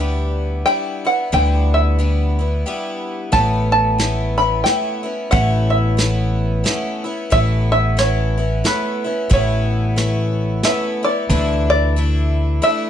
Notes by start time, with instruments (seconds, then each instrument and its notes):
Already playing: upright bass D2, five-string banjo E5
0.00 twelve-string acoustic guitar G3 B3 D4 E4
0.66 twelve-string acoustic guitar G3 B3 D4 E4, five-string banjo G5
1.05 twelve-string acoustic guitar B3 D4 E4, five-string banjo F#5
1.32 upright bass D2, twelve-string acoustic guitar D3 G3 B3 D4 E4, five-string banjo G5
1.74 five-string banjo E5
1.99 twelve-string acoustic guitar G3 B3 D4 E4
2.39 twelve-string acoustic guitar B3 D4 E4
2.66 twelve-string acoustic guitar G3 B3 D4 E4
3.32 upright bass A1, twelve-string acoustic guitar A2 A3 B3 C#4 E4, five-string banjo A5, kick, closed hi-hat
3.72 five-string banjo A5
3.98 twelve-string acoustic guitar A3 B3 C#4 E4, snare, closed hi-hat
4.38 twelve-string acoustic guitar B3 C#4 E4, five-string banjo B5
4.64 twelve-string acoustic guitar A3 B3 C#4 E4, five-string banjo G5, snare, closed hi-hat
5.03 twelve-string acoustic guitar B3 C#4 E4
5.31 upright bass A1, twelve-string acoustic guitar A2 A3 B3 C#4 E4, five-string banjo F#5, kick, closed hi-hat
5.70 five-string banjo E5
5.97 twelve-string acoustic guitar A3 B3 C#4 E4, snare, closed hi-hat
6.64 twelve-string acoustic guitar A3 B3 C#4 E4, snare, closed hi-hat
7.04 twelve-string acoustic guitar B3 C#4 E4
7.30 upright bass A1, twelve-string acoustic guitar A2 A3 B3 C#4 E4, five-string banjo E5, kick, closed hi-hat
7.72 five-string banjo E5
7.97 twelve-string acoustic guitar A3 B3 C#4 E4, five-string banjo C#5, snare, closed hi-hat
8.38 twelve-string acoustic guitar B3 C#4 E4
8.64 twelve-string acoustic guitar A3 B3 C#4 E4, five-string banjo B4, snare, closed hi-hat
9.04 twelve-string acoustic guitar B3 C#4 E4
9.29 upright bass A1, twelve-string acoustic guitar A2 A3 B3 C#4 E4, five-string banjo C#5, kick, closed hi-hat
9.96 twelve-string acoustic guitar A3 B3 C#4 E4, snare, closed hi-hat
10.63 twelve-string acoustic guitar A3 B3 C#4 E4, five-string banjo E5, snare, closed hi-hat
11.03 twelve-string acoustic guitar B3 E4, five-string banjo D5
11.29 upright bass D2, twelve-string acoustic guitar D3 E3 A3 D4 E4
11.70 five-string banjo D5
11.96 twelve-string acoustic guitar E3 A3 D4 E4
12.62 twelve-string acoustic guitar E3 A3 D4 E4, five-string banjo E5